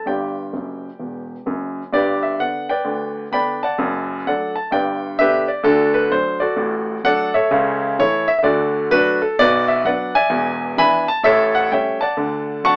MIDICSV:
0, 0, Header, 1, 2, 480
1, 0, Start_track
1, 0, Key_signature, 1, "major"
1, 0, Tempo, 465839
1, 64, Time_signature, 4, 2, 24, 8
1, 9663, Key_signature, 2, "major"
1, 13148, End_track
2, 0, Start_track
2, 0, Title_t, "Grand piano"
2, 0, Program_c, 0, 0
2, 60, Note_on_c, 0, 43, 59
2, 66, Note_on_c, 0, 31, 61
2, 72, Note_on_c, 0, 79, 75
2, 83, Note_on_c, 0, 74, 50
2, 86, Note_on_c, 0, 67, 53
2, 244, Control_c, 0, 64, 127
2, 446, Note_off_c, 0, 43, 0
2, 450, Note_off_c, 0, 31, 0
2, 544, Note_on_c, 0, 30, 50
2, 549, Note_on_c, 0, 42, 47
2, 559, Control_c, 0, 64, 0
2, 905, Note_off_c, 0, 30, 0
2, 908, Note_off_c, 0, 42, 0
2, 1025, Note_on_c, 0, 28, 54
2, 1026, Note_on_c, 0, 40, 49
2, 1385, Note_off_c, 0, 28, 0
2, 1386, Note_off_c, 0, 40, 0
2, 1474, Note_off_c, 0, 74, 0
2, 1475, Note_off_c, 0, 67, 0
2, 1505, Note_on_c, 0, 30, 58
2, 1509, Note_on_c, 0, 42, 67
2, 1510, Note_off_c, 0, 79, 0
2, 1865, Note_off_c, 0, 30, 0
2, 1868, Note_off_c, 0, 42, 0
2, 1983, Note_on_c, 0, 31, 67
2, 1984, Note_on_c, 0, 43, 76
2, 1994, Note_on_c, 0, 74, 99
2, 2005, Note_on_c, 0, 67, 78
2, 2008, Note_on_c, 0, 71, 69
2, 2210, Control_c, 0, 64, 127
2, 2280, Note_off_c, 0, 67, 0
2, 2282, Note_off_c, 0, 71, 0
2, 2295, Note_on_c, 0, 76, 77
2, 2296, Note_off_c, 0, 74, 0
2, 2393, Note_off_c, 0, 31, 0
2, 2393, Note_off_c, 0, 43, 0
2, 2464, Note_on_c, 0, 50, 36
2, 2468, Note_off_c, 0, 76, 0
2, 2473, Note_on_c, 0, 59, 40
2, 2474, Note_on_c, 0, 62, 41
2, 2475, Note_on_c, 0, 78, 88
2, 2479, Control_c, 0, 64, 0
2, 2728, Note_off_c, 0, 50, 0
2, 2736, Note_off_c, 0, 59, 0
2, 2736, Note_off_c, 0, 62, 0
2, 2776, Note_off_c, 0, 78, 0
2, 2776, Note_on_c, 0, 79, 87
2, 2787, Note_on_c, 0, 71, 60
2, 2789, Note_on_c, 0, 74, 68
2, 2931, Note_on_c, 0, 38, 67
2, 2931, Note_on_c, 0, 50, 59
2, 3345, Note_off_c, 0, 50, 0
2, 3346, Note_off_c, 0, 38, 0
2, 3393, Note_off_c, 0, 71, 0
2, 3394, Note_off_c, 0, 74, 0
2, 3414, Note_on_c, 0, 50, 53
2, 3419, Note_on_c, 0, 59, 56
2, 3421, Note_off_c, 0, 79, 0
2, 3425, Note_on_c, 0, 62, 56
2, 3428, Note_on_c, 0, 83, 97
2, 3436, Note_on_c, 0, 79, 76
2, 3440, Note_on_c, 0, 74, 69
2, 3681, Note_off_c, 0, 50, 0
2, 3685, Note_off_c, 0, 59, 0
2, 3689, Note_off_c, 0, 62, 0
2, 3716, Note_off_c, 0, 79, 0
2, 3718, Note_off_c, 0, 74, 0
2, 3733, Note_off_c, 0, 83, 0
2, 3740, Note_on_c, 0, 81, 84
2, 3749, Note_on_c, 0, 74, 64
2, 3755, Note_on_c, 0, 78, 70
2, 3898, Note_on_c, 0, 42, 80
2, 3899, Note_on_c, 0, 30, 76
2, 4138, Control_c, 0, 64, 127
2, 4310, Note_off_c, 0, 30, 0
2, 4310, Note_off_c, 0, 42, 0
2, 4353, Note_off_c, 0, 74, 0
2, 4356, Note_off_c, 0, 78, 0
2, 4390, Note_off_c, 0, 81, 0
2, 4395, Control_c, 0, 64, 0
2, 4396, Note_on_c, 0, 54, 46
2, 4396, Note_on_c, 0, 57, 41
2, 4399, Note_on_c, 0, 62, 45
2, 4401, Note_on_c, 0, 78, 87
2, 4413, Note_on_c, 0, 69, 63
2, 4416, Note_on_c, 0, 74, 62
2, 4657, Note_off_c, 0, 54, 0
2, 4657, Note_off_c, 0, 57, 0
2, 4659, Note_off_c, 0, 62, 0
2, 4685, Note_off_c, 0, 69, 0
2, 4686, Note_off_c, 0, 74, 0
2, 4694, Note_on_c, 0, 81, 79
2, 4699, Note_off_c, 0, 78, 0
2, 4852, Note_on_c, 0, 31, 64
2, 4859, Note_on_c, 0, 43, 76
2, 4866, Note_on_c, 0, 79, 93
2, 4867, Note_off_c, 0, 81, 0
2, 4878, Note_on_c, 0, 74, 66
2, 4879, Note_on_c, 0, 71, 59
2, 5047, Control_c, 0, 64, 127
2, 5266, Note_off_c, 0, 31, 0
2, 5270, Note_off_c, 0, 43, 0
2, 5319, Note_off_c, 0, 71, 0
2, 5319, Note_off_c, 0, 74, 0
2, 5343, Note_on_c, 0, 50, 55
2, 5343, Note_on_c, 0, 59, 57
2, 5344, Note_on_c, 0, 62, 62
2, 5345, Note_on_c, 0, 76, 112
2, 5346, Note_off_c, 0, 79, 0
2, 5360, Control_c, 0, 64, 0
2, 5361, Note_on_c, 0, 71, 84
2, 5365, Note_on_c, 0, 67, 87
2, 5607, Note_off_c, 0, 50, 0
2, 5608, Note_off_c, 0, 59, 0
2, 5609, Note_off_c, 0, 62, 0
2, 5638, Note_off_c, 0, 71, 0
2, 5640, Note_off_c, 0, 67, 0
2, 5649, Note_on_c, 0, 74, 74
2, 5651, Note_off_c, 0, 76, 0
2, 5804, Note_on_c, 0, 38, 80
2, 5806, Note_on_c, 0, 50, 97
2, 5816, Note_on_c, 0, 69, 104
2, 5824, Note_off_c, 0, 74, 0
2, 5826, Note_on_c, 0, 62, 79
2, 5829, Note_on_c, 0, 66, 71
2, 6049, Control_c, 0, 64, 127
2, 6110, Note_off_c, 0, 62, 0
2, 6111, Note_off_c, 0, 66, 0
2, 6119, Note_on_c, 0, 71, 95
2, 6126, Note_off_c, 0, 69, 0
2, 6221, Note_off_c, 0, 38, 0
2, 6222, Note_off_c, 0, 50, 0
2, 6292, Note_on_c, 0, 54, 45
2, 6299, Note_off_c, 0, 71, 0
2, 6301, Note_on_c, 0, 57, 47
2, 6302, Note_on_c, 0, 72, 95
2, 6304, Note_on_c, 0, 62, 53
2, 6314, Control_c, 0, 64, 0
2, 6560, Note_off_c, 0, 54, 0
2, 6566, Note_off_c, 0, 57, 0
2, 6568, Note_off_c, 0, 62, 0
2, 6594, Note_on_c, 0, 74, 81
2, 6609, Note_off_c, 0, 72, 0
2, 6611, Note_on_c, 0, 66, 75
2, 6611, Note_on_c, 0, 69, 69
2, 6761, Note_on_c, 0, 33, 74
2, 6762, Note_on_c, 0, 45, 81
2, 7179, Note_off_c, 0, 33, 0
2, 7179, Note_off_c, 0, 45, 0
2, 7223, Note_off_c, 0, 66, 0
2, 7224, Note_off_c, 0, 69, 0
2, 7253, Note_on_c, 0, 54, 49
2, 7256, Note_off_c, 0, 74, 0
2, 7258, Note_on_c, 0, 57, 60
2, 7261, Note_on_c, 0, 78, 118
2, 7263, Note_on_c, 0, 62, 64
2, 7273, Note_on_c, 0, 69, 87
2, 7276, Note_on_c, 0, 74, 88
2, 7520, Note_off_c, 0, 54, 0
2, 7523, Note_off_c, 0, 57, 0
2, 7527, Note_off_c, 0, 62, 0
2, 7553, Note_off_c, 0, 69, 0
2, 7555, Note_off_c, 0, 74, 0
2, 7565, Note_on_c, 0, 76, 92
2, 7568, Note_off_c, 0, 78, 0
2, 7573, Note_on_c, 0, 69, 76
2, 7574, Note_on_c, 0, 73, 81
2, 7736, Note_on_c, 0, 49, 98
2, 7739, Note_on_c, 0, 37, 92
2, 7964, Control_c, 0, 64, 127
2, 8147, Note_off_c, 0, 49, 0
2, 8149, Note_off_c, 0, 37, 0
2, 8184, Note_off_c, 0, 69, 0
2, 8185, Note_off_c, 0, 73, 0
2, 8222, Note_off_c, 0, 76, 0
2, 8230, Note_on_c, 0, 57, 55
2, 8232, Note_on_c, 0, 52, 50
2, 8233, Control_c, 0, 64, 0
2, 8239, Note_on_c, 0, 73, 111
2, 8243, Note_on_c, 0, 69, 71
2, 8249, Note_on_c, 0, 64, 76
2, 8492, Note_off_c, 0, 57, 0
2, 8493, Note_off_c, 0, 52, 0
2, 8518, Note_off_c, 0, 69, 0
2, 8521, Note_off_c, 0, 64, 0
2, 8529, Note_on_c, 0, 76, 103
2, 8537, Note_off_c, 0, 73, 0
2, 8625, Note_off_c, 0, 76, 0
2, 8641, Note_on_c, 0, 76, 77
2, 8681, Note_on_c, 0, 50, 90
2, 8690, Note_on_c, 0, 38, 84
2, 8694, Note_on_c, 0, 74, 87
2, 8698, Note_off_c, 0, 76, 0
2, 8700, Note_on_c, 0, 66, 79
2, 8703, Note_on_c, 0, 69, 74
2, 8881, Control_c, 0, 64, 127
2, 9098, Note_off_c, 0, 50, 0
2, 9103, Note_off_c, 0, 38, 0
2, 9148, Note_off_c, 0, 66, 0
2, 9149, Note_off_c, 0, 69, 0
2, 9178, Note_on_c, 0, 54, 62
2, 9179, Note_off_c, 0, 74, 0
2, 9181, Note_on_c, 0, 57, 57
2, 9183, Note_on_c, 0, 71, 127
2, 9191, Control_c, 0, 64, 0
2, 9191, Note_on_c, 0, 66, 92
2, 9197, Note_on_c, 0, 62, 91
2, 9443, Note_off_c, 0, 54, 0
2, 9445, Note_off_c, 0, 57, 0
2, 9471, Note_off_c, 0, 66, 0
2, 9475, Note_off_c, 0, 62, 0
2, 9489, Note_off_c, 0, 71, 0
2, 9498, Note_on_c, 0, 69, 83
2, 9668, Note_off_c, 0, 69, 0
2, 9674, Note_on_c, 0, 47, 99
2, 9678, Note_on_c, 0, 74, 127
2, 9679, Note_on_c, 0, 35, 89
2, 9695, Note_on_c, 0, 71, 95
2, 9696, Note_on_c, 0, 66, 86
2, 9848, Control_c, 0, 64, 127
2, 9964, Note_off_c, 0, 71, 0
2, 9965, Note_off_c, 0, 66, 0
2, 9976, Note_off_c, 0, 74, 0
2, 9976, Note_on_c, 0, 76, 92
2, 10077, Note_off_c, 0, 47, 0
2, 10080, Note_off_c, 0, 35, 0
2, 10146, Note_on_c, 0, 54, 56
2, 10147, Note_off_c, 0, 76, 0
2, 10152, Note_on_c, 0, 59, 52
2, 10152, Note_on_c, 0, 62, 56
2, 10154, Control_c, 0, 64, 0
2, 10155, Note_on_c, 0, 78, 97
2, 10165, Note_on_c, 0, 71, 79
2, 10168, Note_on_c, 0, 74, 75
2, 10409, Note_off_c, 0, 54, 0
2, 10413, Note_off_c, 0, 62, 0
2, 10414, Note_off_c, 0, 59, 0
2, 10439, Note_off_c, 0, 71, 0
2, 10440, Note_off_c, 0, 74, 0
2, 10454, Note_off_c, 0, 78, 0
2, 10460, Note_on_c, 0, 80, 108
2, 10467, Note_on_c, 0, 74, 77
2, 10467, Note_on_c, 0, 76, 82
2, 10612, Note_on_c, 0, 28, 83
2, 10613, Note_on_c, 0, 40, 94
2, 10804, Control_c, 0, 64, 127
2, 11024, Note_off_c, 0, 28, 0
2, 11025, Note_off_c, 0, 40, 0
2, 11070, Note_off_c, 0, 74, 0
2, 11071, Note_off_c, 0, 76, 0
2, 11101, Note_off_c, 0, 80, 0
2, 11103, Note_on_c, 0, 52, 59
2, 11105, Note_on_c, 0, 59, 62
2, 11112, Note_on_c, 0, 83, 127
2, 11113, Note_on_c, 0, 62, 68
2, 11116, Control_c, 0, 64, 0
2, 11117, Note_on_c, 0, 80, 94
2, 11124, Note_on_c, 0, 76, 92
2, 11367, Note_off_c, 0, 52, 0
2, 11368, Note_off_c, 0, 59, 0
2, 11374, Note_off_c, 0, 62, 0
2, 11394, Note_off_c, 0, 80, 0
2, 11398, Note_off_c, 0, 76, 0
2, 11413, Note_off_c, 0, 83, 0
2, 11421, Note_on_c, 0, 81, 107
2, 11574, Note_on_c, 0, 45, 92
2, 11576, Note_on_c, 0, 33, 78
2, 11584, Note_on_c, 0, 76, 121
2, 11589, Note_off_c, 0, 81, 0
2, 11596, Note_on_c, 0, 73, 93
2, 11598, Note_on_c, 0, 69, 99
2, 11786, Control_c, 0, 64, 127
2, 11874, Note_off_c, 0, 73, 0
2, 11875, Note_off_c, 0, 69, 0
2, 11889, Note_off_c, 0, 76, 0
2, 11899, Note_on_c, 0, 78, 105
2, 11985, Note_off_c, 0, 45, 0
2, 11987, Note_off_c, 0, 33, 0
2, 12068, Note_off_c, 0, 78, 0
2, 12069, Note_on_c, 0, 57, 48
2, 12070, Note_on_c, 0, 61, 53
2, 12072, Control_c, 0, 64, 0
2, 12073, Note_on_c, 0, 55, 48
2, 12076, Note_on_c, 0, 79, 87
2, 12088, Note_on_c, 0, 73, 73
2, 12093, Note_on_c, 0, 76, 78
2, 12332, Note_off_c, 0, 57, 0
2, 12332, Note_off_c, 0, 61, 0
2, 12334, Note_off_c, 0, 55, 0
2, 12360, Note_off_c, 0, 73, 0
2, 12363, Note_off_c, 0, 76, 0
2, 12372, Note_on_c, 0, 81, 93
2, 12374, Note_off_c, 0, 79, 0
2, 12387, Note_on_c, 0, 78, 71
2, 12389, Note_on_c, 0, 74, 77
2, 12538, Note_on_c, 0, 50, 84
2, 12539, Note_on_c, 0, 38, 70
2, 12735, Control_c, 0, 64, 127
2, 12948, Note_off_c, 0, 50, 0
2, 12949, Note_off_c, 0, 38, 0
2, 12991, Note_off_c, 0, 78, 0
2, 12992, Note_off_c, 0, 74, 0
2, 13022, Note_on_c, 0, 54, 51
2, 13025, Note_off_c, 0, 81, 0
2, 13029, Note_on_c, 0, 57, 54
2, 13032, Note_on_c, 0, 85, 116
2, 13034, Control_c, 0, 64, 0
2, 13035, Note_on_c, 0, 62, 58
2, 13039, Note_on_c, 0, 78, 91
2, 13044, Note_on_c, 0, 81, 95
2, 13148, Note_off_c, 0, 54, 0
2, 13148, Note_off_c, 0, 57, 0
2, 13148, Note_off_c, 0, 62, 0
2, 13148, Note_off_c, 0, 78, 0
2, 13148, Note_off_c, 0, 81, 0
2, 13148, Note_off_c, 0, 85, 0
2, 13148, End_track
0, 0, End_of_file